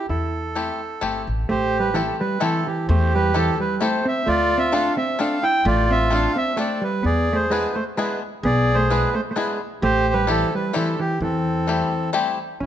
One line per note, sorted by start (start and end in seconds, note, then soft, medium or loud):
0.09 0.70 E2 medium
0.09 1.23 E4 medium
0.09 1.23 A4 medium
0.56 0.80 A3 medium
0.56 0.80 C4 soft
0.56 0.80 E4 medium
0.56 0.80 G4 medium
1.01 1.24 G1 medium
1.01 1.26 A3 medium
1.01 1.26 C4 medium
1.01 1.27 E4 medium
1.01 1.27 G4 medium
1.27 1.47 A1 medium
1.49 2.10 A1 medium
1.49 1.78 A3 medium
1.49 2.16 G4 medium
1.49 1.78 C5 loud
1.80 1.93 G3 medium
1.80 1.96 B4 medium
1.94 2.01 E3 medium
1.94 2.19 A3 medium
1.94 2.19 C4 medium
1.94 2.20 E4 medium
1.94 2.20 G4 medium
1.94 2.06 A4 medium
1.94 2.20 A4 medium
2.20 2.41 G3 medium
2.20 2.42 B4 medium
2.40 2.64 E3 medium
2.40 2.65 A3 medium
2.40 2.66 C4 medium
2.40 2.66 E4 medium
2.40 2.66 G4 medium
2.40 2.66 A4 medium
2.40 2.67 A4 medium
2.67 2.87 E3 medium
2.67 2.87 G4 medium
2.88 3.49 E2 loud
2.88 3.12 A3 medium
2.88 3.55 G4 medium
2.88 3.13 C5 medium
3.15 3.34 G3 medium
3.15 3.36 B4 loud
3.34 3.58 E3 medium
3.34 3.58 A3 medium
3.34 3.59 C4 medium
3.34 3.58 E4 medium
3.34 3.59 G4 medium
3.34 3.59 A4 medium
3.34 3.58 A4 loud
3.60 3.79 G3 medium
3.60 3.80 B4 medium
3.81 4.05 A3 medium
3.81 4.03 A3 medium
3.81 4.05 C4 medium
3.81 4.05 E4 medium
3.81 4.05 G4 medium
3.81 4.06 A4 medium
3.81 4.06 C5 medium
4.05 4.25 C4 medium
4.05 4.28 E5 loud
4.26 4.87 D2 medium
4.26 4.55 A3 medium
4.26 4.93 F4 medium
4.26 4.59 D5 loud
4.58 4.72 C4 medium
4.58 4.74 E5 loud
4.72 4.97 A3 medium
4.72 4.97 C4 medium
4.72 4.95 D4 medium
4.72 4.97 D4 medium
4.72 4.97 F4 medium
4.72 4.97 A4 medium
4.72 4.96 F5 loud
4.97 5.17 C4 medium
4.97 5.20 E5 medium
5.19 5.43 A3 medium
5.19 5.43 C4 medium
5.19 5.43 D4 medium
5.19 5.42 D4 medium
5.19 5.43 F4 medium
5.19 5.44 A4 medium
5.19 5.44 F5 medium
5.43 5.63 E4 medium
5.43 5.66 G5 loud
5.65 6.25 A1 loud
5.65 5.88 A3 medium
5.65 6.32 F4 medium
5.65 5.91 D5 medium
5.91 6.10 C4 medium
5.91 6.13 E5 loud
6.10 6.35 A3 medium
6.10 6.35 C4 medium
6.10 6.36 D4 medium
6.10 6.35 D4 medium
6.10 6.36 F4 medium
6.10 6.36 A4 medium
6.10 6.37 F5 loud
6.36 6.56 C4 medium
6.36 6.59 E5 loud
6.57 6.80 A3 medium
6.57 6.82 A3 medium
6.57 6.82 C4 medium
6.57 6.82 D4 medium
6.57 6.83 F4 medium
6.57 6.82 A4 medium
6.57 6.83 D5 medium
6.81 7.02 G3 medium
6.81 7.05 B4 medium
7.03 7.64 E2 medium
7.03 7.32 B3 medium
7.03 7.71 G#4 medium
7.03 7.36 D5 loud
7.33 7.48 A3 medium
7.33 7.51 C5 medium
7.50 7.73 G#3 medium
7.50 7.75 G#3 medium
7.50 7.75 B3 medium
7.50 7.75 D4 medium
7.50 7.76 E4 medium
7.50 7.76 G#4 medium
7.50 7.76 B4 medium
7.74 7.81 A3 medium
7.74 7.84 C5 medium
7.97 8.21 G#3 medium
7.97 8.20 G#3 medium
7.97 8.22 B3 medium
7.97 8.22 D4 medium
7.97 8.22 E4 medium
7.97 8.22 G#4 medium
7.97 8.19 B4 medium
8.43 9.03 B1 loud
8.43 8.73 B3 medium
8.43 9.10 G#4 medium
8.43 8.76 D5 loud
8.74 8.89 A3 medium
8.74 8.90 C5 loud
8.90 9.14 G#3 medium
8.90 9.14 B3 medium
8.90 9.15 D4 medium
8.90 9.14 E4 medium
8.90 9.15 G#4 medium
8.90 9.14 B4 medium
9.14 9.19 A3 medium
9.14 9.21 C5 medium
9.31 9.35 A3 medium
9.31 9.36 C5 soft
9.36 9.60 G#3 medium
9.36 9.58 G#3 medium
9.36 9.60 B3 medium
9.36 9.60 D4 medium
9.36 9.60 E4 medium
9.36 9.61 G#4 medium
9.36 9.58 B4 medium
9.82 10.42 A1 loud
9.82 10.11 A3 medium
9.82 10.48 G4 medium
9.82 10.14 C5 loud
10.14 10.28 G3 medium
10.14 10.29 B4 loud
10.27 10.51 E3 medium
10.27 10.52 G3 medium
10.27 10.52 A3 medium
10.27 10.52 C4 medium
10.27 10.53 E4 medium
10.27 10.52 G4 medium
10.27 10.54 A4 loud
10.55 10.74 G3 medium
10.55 10.76 B4 medium
10.73 10.98 E3 medium
10.73 10.98 G3 medium
10.73 10.98 A3 medium
10.73 10.98 C4 medium
10.73 10.98 E4 medium
10.73 10.98 G4 medium
10.73 11.00 A4 medium
11.00 11.19 E3 medium
11.00 11.19 G4 medium
11.20 11.81 E2 medium
11.20 12.10 E3 medium
11.20 12.10 C4 medium
11.20 12.10 A4 medium
11.67 11.92 G3 medium
11.67 11.92 A3 medium
11.67 11.92 C4 medium
11.67 11.92 E4 medium
11.67 11.92 G4 medium
12.13 12.38 G3 medium
12.13 12.38 A3 medium
12.13 12.38 C4 medium
12.13 12.38 E4 medium
12.13 12.38 G4 medium
12.60 12.66 A1 medium
12.60 12.66 C#4 medium
12.60 12.66 E4 medium